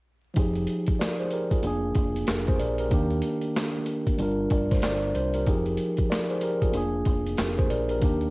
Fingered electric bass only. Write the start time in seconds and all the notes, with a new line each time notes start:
0.37 F1
1.64 F1
1.96 F1
2.28 F1
2.60 A#1
2.92 D#2
4.19 G1
4.51 G1
4.83 G1
5.15 C2
5.47 F1
6.75 F1
7.06 F1
7.39 F1
7.70 A#1
8.02 D#2